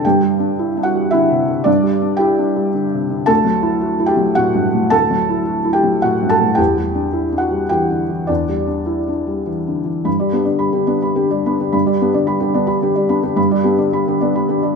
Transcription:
0.00 0.15 D3 soft
0.05 1.64 G2 medium
0.05 0.82 G4 medium
0.05 0.86 G5 medium
0.23 0.51 G3 soft
0.39 0.69 D4 soft
0.59 0.77 E4 soft
0.77 1.06 D4 soft
0.83 1.10 F#4 medium
0.83 1.11 F#5 medium
0.95 1.24 G3 soft
1.11 1.42 D3 soft
1.11 1.63 E4 medium
1.11 1.66 E5 medium
1.30 1.48 C3 soft
1.48 1.77 D3 soft
1.64 3.25 G2 medium
1.64 2.00 D4 medium
1.64 2.19 D5 medium
1.83 2.13 G3 soft
2.02 2.31 D4 soft
2.17 2.38 E4 soft
2.17 2.70 G4 medium
2.17 2.73 G5 medium
2.38 2.68 D4 soft
2.56 2.86 G3 soft
2.74 3.03 D3 soft
2.93 3.11 C3 soft
3.10 3.28 D3 soft
3.26 4.88 D2 medium
3.26 4.05 A4 medium
3.26 4.09 A5 medium
3.45 3.75 F#3 soft
3.62 3.93 E4 soft
3.81 4.00 F#4 soft
4.00 4.30 E4 soft
4.06 4.34 G4 medium
4.06 4.36 G5 medium
4.17 4.47 F#3 soft
4.35 4.67 A2 soft
4.35 4.88 F#4 medium
4.35 4.91 F#5 medium
4.55 4.74 G2 soft
4.74 5.03 A2 soft
4.90 6.53 D2 medium
4.90 5.71 A4 medium
4.90 5.74 A5 medium
5.11 5.40 F#3 soft
5.29 5.59 E4 soft
5.46 5.65 F#4 soft
5.64 5.95 E4 soft
5.73 6.00 G4 medium
5.73 6.02 G5 medium
5.83 6.13 F#3 soft
6.02 6.33 A2 soft
6.02 6.29 F#4 medium
6.02 6.30 F#5 medium
6.22 6.40 G2 soft
6.29 6.56 A4 medium
6.29 6.58 A5 medium
6.41 6.59 A2 soft
6.55 8.24 E2 medium
6.55 7.37 G4 medium
6.55 7.40 G5 medium
6.77 7.06 G3 soft
6.95 7.24 D4 soft
7.13 7.32 E4 soft
7.32 7.62 D4 soft
7.38 7.67 F#4 medium
7.38 7.68 F#5 medium
7.51 7.81 G3 soft
7.69 8.02 E3 soft
7.69 8.26 G4 medium
7.69 8.29 G5 medium
7.90 8.10 D3 soft
8.10 8.41 E3 soft
8.27 10.03 E2 soft
8.27 8.65 D4 soft
8.27 9.47 D5 medium
8.49 8.81 G3 soft
8.67 9.00 D4 soft
8.86 9.07 E4 soft
9.08 9.40 D4 soft
9.27 9.59 G3 soft
9.46 9.78 E3 soft
9.67 9.87 D3 soft
9.85 10.05 E3 soft
10.05 11.69 G2 soft
10.05 10.29 B5 soft
10.20 10.43 G3 soft
10.20 10.43 D5 soft
10.33 10.47 B3 soft
10.33 10.47 D4 soft
10.33 10.57 G4 soft
10.45 10.70 D3 soft
10.45 10.69 D5 soft
10.59 10.83 G3 soft
10.59 10.83 B5 soft
10.72 10.97 D3 soft
10.72 10.97 G4 soft
10.87 11.01 B3 soft
10.87 11.01 D4 soft
10.87 11.11 D5 soft
11.02 11.26 G3 soft
11.02 11.26 B5 soft
11.16 11.40 D3 soft
11.16 11.40 G4 soft
11.31 11.54 G3 soft
11.31 11.54 D5 soft
11.46 11.59 B3 soft
11.46 11.59 D4 soft
11.46 11.68 B5 soft
11.60 11.82 D3 soft
11.60 11.82 G4 soft
11.72 13.33 G2 medium
11.72 11.95 B5 medium
11.86 12.09 G3 soft
11.86 12.09 D5 soft
12.01 12.14 B3 soft
12.01 12.14 D4 soft
12.01 12.24 G4 soft
12.14 12.37 D3 soft
12.14 12.37 D5 soft
12.27 12.50 G3 soft
12.27 12.50 B5 medium
12.40 12.63 D3 soft
12.40 12.63 G4 soft
12.54 12.67 B3 soft
12.54 12.68 D4 soft
12.54 12.77 D5 medium
12.67 12.90 G3 soft
12.67 12.90 B5 soft
12.82 13.04 D3 soft
12.82 13.05 G4 medium
12.96 13.18 G3 soft
12.96 13.18 D5 soft
13.09 13.22 B3 soft
13.09 13.22 D4 soft
13.09 13.31 B5 soft
13.23 13.45 D3 soft
13.23 13.45 G4 soft
13.36 14.76 G2 medium
13.36 13.59 B5 medium
13.51 13.73 G3 soft
13.51 13.73 D5 medium
13.64 13.76 B3 soft
13.64 13.77 D4 soft
13.64 13.86 G4 soft
13.78 14.00 D3 soft
13.78 14.01 D5 soft
13.93 14.15 G3 soft
13.93 14.15 B5 medium
14.07 14.29 D3 soft
14.07 14.29 G4 soft
14.21 14.34 B3 soft
14.21 14.34 D4 soft
14.21 14.43 D5 soft
14.35 14.57 G3 soft
14.35 14.58 B5 soft
14.49 14.71 D3 soft
14.49 14.71 G4 soft
14.63 14.76 G3 soft
14.63 14.76 D5 soft

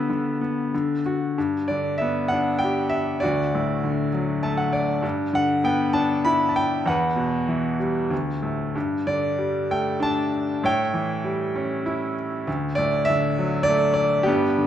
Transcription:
0.00 0.10 D3 medium
0.00 0.40 B3 soft
0.00 1.01 G4 medium
0.00 1.01 A4 soft
0.00 1.00 E5 medium
0.10 0.71 D3 medium
0.41 0.72 B3 soft
0.74 1.36 D3 medium
1.06 1.36 F#4 soft
1.38 3.19 G2 medium
1.68 2.90 D3 soft
1.68 1.97 D5 medium
1.98 3.20 B3 soft
1.98 2.31 E5 medium
2.28 3.21 D4 soft
2.28 2.58 F#5 medium
2.59 2.92 G5 medium
2.64 3.22 G4 soft
2.89 3.22 E5 medium
3.20 4.10 F#4 medium
3.20 4.09 D5 medium
3.25 5.01 D2 medium
3.55 4.71 A2 soft
3.84 5.01 D3 soft
4.13 5.01 F#3 soft
4.43 5.02 A3 soft
4.43 4.57 A5 medium
4.57 4.72 F#5 medium
4.73 5.02 D5 medium
5.03 6.83 G2 medium
5.33 6.52 D3 soft
5.33 5.66 F#5 medium
5.64 6.83 B3 soft
5.64 5.93 G5 medium
5.93 6.84 D4 soft
5.93 6.23 A5 medium
6.25 6.85 E4 medium
6.25 6.50 B5 medium
6.49 6.56 A5 medium
6.56 6.88 G5 medium
6.86 8.07 E2 medium
6.86 7.77 B4 medium
6.86 7.76 F#5 medium
7.16 8.08 B2 soft
7.48 8.09 E3 soft
7.80 8.11 G3 soft
8.10 8.73 D2 soft
8.43 8.74 A2 soft
8.75 10.60 G2 medium
9.07 10.29 D3 soft
9.07 9.72 D5 medium
9.38 10.60 G3 soft
9.71 10.61 A3 soft
9.71 10.00 G5 medium
10.00 10.61 D4 soft
10.00 10.66 A5 medium
10.63 12.43 A2 medium
10.63 11.82 C#5 medium
10.63 11.83 G5 medium
10.94 12.13 E3 soft
11.24 12.43 G3 soft
11.56 12.45 C#4 soft
11.86 12.45 E4 medium
12.47 14.23 D2 medium
12.75 13.94 A2 soft
12.75 13.07 D5 medium
13.05 13.67 E5 medium
13.10 14.25 D3 soft
13.38 14.25 F#3 soft
13.63 13.92 D5 loud
13.68 14.26 A3 soft
13.94 14.26 D5 medium
14.23 14.67 B3 medium
14.23 14.67 G4 medium
14.28 14.67 G2 medium
14.58 14.67 D3 soft

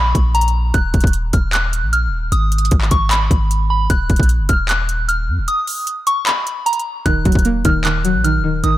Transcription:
0.00 0.13 A#1 loud
0.00 0.32 B5 medium
0.15 0.72 A#1 loud
0.15 kick medium
0.15 closed hi-hat medium
0.35 0.52 A#5 medium
0.35 closed hi-hat medium
0.41 closed hi-hat medium
0.48 closed hi-hat soft
0.74 0.93 D#1 loud
0.74 1.11 F#6 loud
0.74 kick loud
0.74 closed hi-hat medium
0.94 1.03 D#1 loud
0.94 kick medium
0.94 closed hi-hat soft
0.94 open hi-hat medium
1.01 1.32 D#1 loud
1.01 kick loud
1.01 closed hi-hat medium
1.07 closed hi-hat medium
1.13 closed hi-hat medium
1.33 1.84 D#1 loud
1.33 1.50 F6 medium
1.33 kick medium
1.33 closed hi-hat medium
1.53 1.90 F#6 medium
1.53 clap loud
1.53 closed hi-hat medium
1.73 closed hi-hat medium
1.83 2.09 A#1 loud
1.93 2.10 F6 medium
1.93 closed hi-hat medium
2.07 2.31 D#1 loud
2.32 2.70 G#1 loud
2.32 2.69 D#6 medium
2.32 closed hi-hat medium
2.52 closed hi-hat medium
2.58 closed hi-hat medium
2.65 closed hi-hat medium
2.71 2.91 G#1 loud
2.71 kick medium
2.71 closed hi-hat medium
2.81 clap medium
2.91 3.29 G#1 loud
2.91 3.08 C#6 medium
2.91 kick medium
2.91 closed hi-hat medium
3.11 3.67 B5 medium
3.11 clap loud
3.11 closed hi-hat medium
3.31 3.88 G#1 loud
3.31 kick medium
3.31 closed hi-hat medium
3.51 closed hi-hat medium
3.70 3.87 B5 medium
3.90 4.09 D#1 loud
3.90 4.27 F#6 loud
3.90 kick loud
3.90 closed hi-hat medium
4.10 4.19 D#1 loud
4.10 kick medium
4.10 closed hi-hat soft
4.10 open hi-hat medium
4.16 4.41 A#1 loud
4.16 kick loud
4.16 closed hi-hat medium
4.23 closed hi-hat medium
4.29 closed hi-hat medium
4.39 4.49 F#1 loud
4.49 5.30 D#1 loud
4.49 4.66 F6 medium
4.49 kick medium
4.49 closed hi-hat medium
4.69 5.06 F#6 medium
4.69 clap loud
4.69 closed hi-hat medium
4.89 closed hi-hat medium
5.08 5.25 F6 medium
5.08 closed hi-hat medium
5.28 5.39 F#2 loud
5.38 5.47 D#1 loud
5.48 5.85 D#6 medium
5.48 closed hi-hat medium
5.67 open hi-hat medium
5.87 closed hi-hat medium
6.07 6.24 C#6 medium
6.07 closed hi-hat medium
6.27 6.64 B5 medium
6.27 clap loud
6.27 closed hi-hat medium
6.47 closed hi-hat medium
6.66 6.83 A#5 medium
6.66 closed hi-hat medium
6.73 closed hi-hat medium
6.79 closed hi-hat soft
7.06 7.25 D#1 loud
7.06 7.64 D#3 medium
7.06 7.43 F#6 loud
7.06 kick loud
7.06 closed hi-hat medium
7.25 7.35 D#1 loud
7.25 8.03 F#3 medium
7.25 kick medium
7.25 closed hi-hat soft
7.25 open hi-hat medium
7.32 7.64 D#1 loud
7.32 kick loud
7.32 closed hi-hat medium
7.39 closed hi-hat medium
7.45 8.44 A#3 medium
7.45 closed hi-hat medium
7.65 8.16 D#1 loud
7.65 7.83 D#3 medium
7.65 7.82 F6 medium
7.65 kick medium
7.65 closed hi-hat medium
7.85 8.23 D#3 medium
7.85 8.22 F#6 medium
7.85 clap loud
7.85 closed hi-hat medium
8.04 8.64 F#3 medium
8.04 closed hi-hat medium
8.14 8.41 A#1 loud
8.24 8.43 D#3 medium
8.24 8.41 F6 medium
8.24 closed hi-hat medium
8.39 8.62 D#1 loud
8.44 8.62 D#3 medium
8.64 8.78 G#1 loud
8.64 8.78 D#3 medium
8.64 8.78 D#6 medium
8.64 closed hi-hat medium

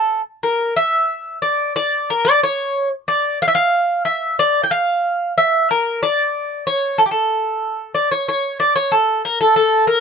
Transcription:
0.00 0.21 A4 medium
0.43 0.73 A#4 medium
0.76 1.38 E5 medium
1.42 1.72 D5 medium
1.76 2.09 D5 loud
2.10 2.26 A#4 medium
2.25 2.40 D5 medium
2.43 2.88 C#5 medium
3.08 3.38 D5 medium
3.42 3.47 F5 medium
3.48 3.54 E5 medium
3.55 4.02 F5 loud
4.05 4.36 E5 medium
4.39 4.63 D5 medium
4.63 4.70 G5 medium
4.71 5.32 F5 medium
5.38 5.67 E5 medium
5.71 6.00 A#4 medium
6.03 6.66 D5 medium
6.67 6.97 C#5 medium
6.98 7.05 A4 medium
7.06 7.11 G4 medium
7.11 7.91 A4 medium
7.95 8.11 D5 medium
8.11 8.27 C#5 medium
8.29 8.59 C#5 medium
8.60 8.75 D5 medium
8.76 8.91 C#5 medium
8.92 9.22 A4 medium
9.25 9.39 A#4 medium
9.41 9.55 A4 medium
9.56 9.86 A4 loud
9.87 10.00 A#4 medium

